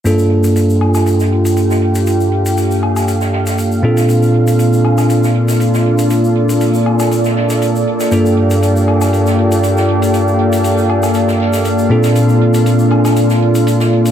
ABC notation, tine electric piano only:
X:1
M:4/4
L:1/8
Q:"Swing 16ths" 1/4=119
K:Gm
V:1 name="Tine electric piano"
[G,,B,DFA]8- | [G,,B,DFA]6- [G,,B,DFA] [B,,CDFA]- | [B,,CDFA]8- | [B,,CDFA]6- [B,,CDFA] z |
[G,,B,DFA]8- | [G,,B,DFA]6- [G,,B,DFA] [B,,CDFA]- | [B,,CDFA]8 |]